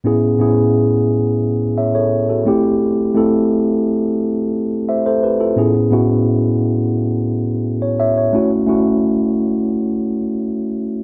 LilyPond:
\new Staff \with { instrumentName = "Tine electric piano" } { \time 4/4 \key a \major \tempo 4 = 87 << { r2 r8 <cis'' e''>16 <a' cis''>8 <fis' a'>8 r16 | r2. <c'' e''>16 <a' c''>16 <g' b'>16 <f' a'>16~ | <f' a'>16 r2. cis''16 <cis'' e''>16 cis''16~ | cis''16 r2. r8. | } \\ { <a, b cis' e' gis'>8 <a, b cis' e' gis'>4. r4. <a c' e' g'>8~ | <a c' e' g'>8 <a c' e' a'>4. r2 | <a, b cis' e' gis'>8 <a, b cis' e' fis'>4. r2 | <a cis' e' fis'>8 <a cis' e' fis'>4. r2 | } >> }